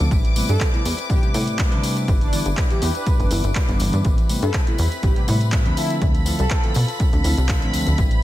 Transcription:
Already playing: A3 C4 D4 D6
0.00 D2 F4 A4, tambourine
0.11 A1 G3 C4 E4 B4, kick, closed hi-hat, tambourine
0.25 closed hi-hat, tambourine
0.35 C3 G3 A3 B3 C4 E4 B4, open hi-hat, tambourine
0.49 G2 A4, closed hi-hat, tambourine
0.60 G3 C4 E4 B4, kick, clap, closed hi-hat, tambourine
0.73 C3 G3 A3 B3 E4, closed hi-hat, tambourine
0.85 E2 G3 C4 E4 B4, open hi-hat, tambourine
0.98 C4 E4 B4, closed hi-hat, tambourine
1.09 A1 G3 E4 G4 B4, kick, closed hi-hat, tambourine
1.22 A2 C3 G3 A3 B3 C4 D4 E4 B4, closed hi-hat, tambourine
1.34 A2 C3 G3 A3 B3 C4 E4 B4, open hi-hat, tambourine
1.48 closed hi-hat, tambourine
1.59 G3 C4 E4 B4, kick, clap, closed hi-hat, tambourine
1.71 D2 C3 G3 A3 D4 B4, closed hi-hat, tambourine
1.83 open hi-hat, tambourine
1.96 C4 E4 B4, closed hi-hat, tambourine
2.08 G1 G3 D4 E4 B4, kick, closed hi-hat, tambourine
2.21 D4, closed hi-hat, tambourine
2.32 D3 E3 G3 B3 D4 E4 B4, open hi-hat, tambourine
2.45 G1, closed hi-hat, tambourine
2.57 G3 D4 E4 B4, kick, clap, closed hi-hat, tambourine
2.70 D3 E3 G3 B3 E4 G4, closed hi-hat, tambourine
2.81 E2 G3 D4 E4 B4, open hi-hat, tambourine
2.94 D4 E4 B4, closed hi-hat, tambourine
3.06 G3 D4 E4 B4, kick, closed hi-hat, tambourine
3.19 G1 D3 E3 G3 B3 D4 E4 B4, closed hi-hat, tambourine
3.31 G1 D3 E3 G3 B3 D4 E4 B4, open hi-hat, tambourine
3.44 G1, closed hi-hat, tambourine
3.55 G3 D4 E4 B4, kick, clap, closed hi-hat, tambourine
3.68 G1 D3 E3 G3 B3 D4, closed hi-hat, tambourine
3.80 G1, open hi-hat, tambourine
3.92 G2 D4 E4 B4, closed hi-hat, tambourine
4.04 A1 G3 C4 E4 B4 B5, kick, closed hi-hat, tambourine
4.18 closed hi-hat, tambourine
4.28 C3 G3 A3 B3 C4 E4 B4, open hi-hat, tambourine
4.42 G2 A4, closed hi-hat, tambourine
4.53 G3 C4 B4, kick, clap, closed hi-hat, tambourine
4.67 C3 G3 A3 B3 E4, closed hi-hat, tambourine
4.78 E2 G3 C4 E4 B4, open hi-hat, tambourine
4.90 C4 E4 B4, closed hi-hat, tambourine
5.02 A1 G3 E4 G4 B4, kick, closed hi-hat, tambourine
5.15 A2 C3 G3 A3 B3 C4 D4 E4 B4, closed hi-hat, tambourine
5.27 A2 C3 G3 A3 B3 C4 E4 B4, open hi-hat, tambourine
5.40 closed hi-hat, tambourine
5.52 G3 C4 E4 B4, kick, clap, closed hi-hat, tambourine
5.65 D2 D3 F3 A3 C4 D4, closed hi-hat, tambourine
5.76 C4 E4 F4 A4, open hi-hat, tambourine
5.90 closed hi-hat, tambourine
6.01 D2, kick, closed hi-hat, tambourine
6.15 closed hi-hat, tambourine
6.25 D3 F3 A3 C4 E4 F4 A4, open hi-hat, tambourine
6.39 C2 A4, closed hi-hat, tambourine
6.50 C4 F4 A4, kick, clap, closed hi-hat, tambourine
6.64 D3 F3 A3 C4 E4, closed hi-hat, tambourine
6.74 B2 C4 F4 A4, open hi-hat, tambourine
6.88 F4 A4, closed hi-hat, tambourine
6.99 C4 F4 A4, kick, closed hi-hat, tambourine
7.12 D2 D3 F3 A3 C4 D4 F4 A4, closed hi-hat, tambourine
7.24 D2 D3 F3 A3 C4 E4 F4 A4, open hi-hat, tambourine
7.37 C2, closed hi-hat, tambourine
7.48 C4 F4 A4, kick, clap, closed hi-hat, tambourine
7.62 A1 D3 F3 A3 C4 D4, closed hi-hat, tambourine
7.74 D2, open hi-hat, tambourine
7.86 D2 F4 A4, closed hi-hat, tambourine
7.98 A1 G3 C4 E4 B4, kick, closed hi-hat, tambourine
8.11 closed hi-hat, tambourine

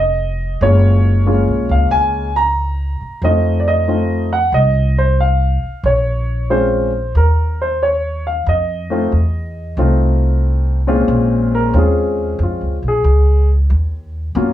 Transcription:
Already playing: F1 D#5
0.61 F#1 G#3 A#3 C#4 F4 C#5
1.26 G#3 A#3 C#4 F4
1.48 A#1
1.69 C#2 F5
1.91 C#2 G#5
2.36 A#5
3.01 muted upright bass stroke
3.22 F2 A3 C4 D#4 F4 D#5
3.60 D5
3.68 D#5
3.88 A3 C4 D#4 F4
4.33 F#5
4.52 C2 D#5
4.98 C5
5.20 F5
5.63 muted upright bass stroke
5.83 A#1 C#5
6.50 G#3 C4 C#4 F4 C5
7.15 D#2 A#4
7.62 C5
7.83 C#5
8.27 F5
8.46 F2 D#5
8.90 A3 C4 D#4 F4
9.12 E2
9.77 C2 A3 C4 D#4 F4
10.87 A#2 G#3 C4 C#4 F4
11.08 A#1
11.55 A#4
11.74 D#2 G#3 C4 C#4 F4
11.78 G#4
12.39 F2
12.43 F4
12.61 C#2
12.83 A#1
12.88 G#4
13.04 C#2
13.70 D#2
14.35 F#2 F#3 A#3 C#4 F4

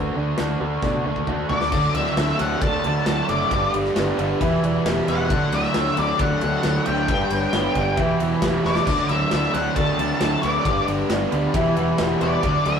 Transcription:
Already playing: D3 A3 D4 F#4 A4 B4
0.13 D2 D3 A3 D4 F#4 A4 D5
0.17 F#4
0.36 D2 D3 A3 D4 F#4 A4 D5, snare, closed hi-hat
0.60 D2 D3 A3 D4 F#4 A4 D5
0.82 B2 D3 A3 D4 F#4 A4 D5, kick, snare
0.93 high tom
1.05 D2 D3 A3 D4 F#4
1.16 kick
1.27 D2 D3 A3 D4 F#4 A4 D5, kick
1.49 D2 D3 A3 D4 F#4 A4 D5, floor tom
1.61 snare
1.72 D2 D3 F#3 A3 D4 F#4 A4 D5, kick, crash
1.95 D2 F#3 D4 F#4 A4 D5 E5, ride
2.06 snare
2.17 D2 D3 A3 D4 F#4 A4 E5, snare, ride
2.28 snare
2.39 D2 D3 F#3 A3 D4 F#4 A4 D5 F#5, snare, ride
2.61 D2 D3 A3 D4 F#4 A4 D5 A5, kick, ride
2.84 D2 D3 D4 F#4 A4 D5, ride
3.06 D2 D3 F#3 A3 D4 F#4 A4 D5, snare, ride
3.29 F#1 D3 A3 D4 F#4 A4 D5 E5, ride
3.50 G1 G2 D3 G3 B3 D4 G4 B4 D5, kick, ride
3.73 G1 G3 D4 G4 B4, ride
3.85 snare
3.96 G1 G2 D3 G3 B3 D4 G4 B4 D5, snare, ride
4.17 G1 G2 D3 G3 B3 D4 G4 B4 D5, ride
4.40 E1 E2 B2 E3 G3 B3 E4 G4 B4 E5, kick, ride
4.62 E1 E3 E4 G4 B4 D5, ride
4.85 E1 E2 B2 E3 G3 E4 G4 B4 E5, snare, ride
5.08 E1 E2 B2 E3 G3 B3 E4 G4 B4 F#5 G5, ride
5.29 D2 D3 F#3 A3 D4 F#4 A4 D5, kick, ride
5.52 D2 F#3 D4 F#4 A4 D5 E5, ride
5.63 snare
5.74 D2 D3 A3 D4 F#4 A4 C#5, snare, ride
5.85 snare
5.97 D2 D3 F#3 A3 D4 F#4 A4 D5, ride
6.19 D2 D3 A3 D4 F#4 A4 D5 F#5, kick, ride
6.41 D2 D3 D4 F#4 A4 D5, ride
6.63 D2 D3 F#3 A3 D4 F#4 D5, snare, ride
6.86 D2 D3 A3 D4 F#4 A4 D5 G5, ride
7.08 G1 G2 D3 G3 B3 D4 G4 B4 D5, kick, ride
7.30 G1 G3 D4 G4 B4 C#5, ride
7.53 G1 G2 D3 G3 B3 D4 G4 B4 C#5, snare, ride
7.75 G1 G2 D3 G3 B3 D4 G4 B4 D5, kick, ride
7.97 E1 E2 B2 E3 G3 B3 E4 G4 B4 E5, kick, ride
8.20 E1 E3 E4 G4 B4 E5, ride
8.41 E1 E2 B2 E3 G3 E4 G4 B4 E5, kick, snare, ride
8.65 E1 E2 B2 E3 G3 B3 E4 G4 B4 D5 E5, snare
8.75 snare
8.87 D2 D3 F#3 A3 D4 F#4 A4 D5, kick, crash, splash
9.09 D2 F#3 D4 F#4 A4 C#5 E5, ride
9.31 D2 D3 A3 D4 F#4 A4 D5 E5, snare, ride
9.43 snare
9.54 D2 D3 F#3 A3 D4 F#4 A4 D5 F#5, snare, ride
9.76 D2 D3 A3 D4 F#4 A4 D5 A5, kick, ride
9.98 D2 D3 D4 F#4 A4, ride
10.20 D2 D3 F#3 A3 D4 F#4 A4 E5, snare, ride
10.42 D2 D3 A3 D4 A4 B4 D5, ride
10.65 G1 G2 D3 G3 B3 D4 G4 B4 D5, kick, ride
10.87 G1 G3 D4 G4 B4 D5, ride
11.09 G1 G2 D3 G3 B3 D4 G4 B4 D5, snare, ride
11.32 D2 G2 D3 G3 B3 D4 G4 B4 D5, ride
11.54 E1 E2 B2 E3 G3 B3 E4 G4 B4 E5, kick, ride
11.76 E1 E3 E4 G4 B4 F#5, ride
11.98 E1 E2 B2 E3 G3 E4 G4 B4 F#5, snare, ride
12.21 E1 E2 B2 E3 G3 B3 E4 G4 B4 D5 E5, ride
12.43 D2 D3 F#3 A3 D4 F#4 A4 D5, kick, ride
12.65 D2 F#3 D4 F#4 A4 D5 E5, ride
12.76 snare

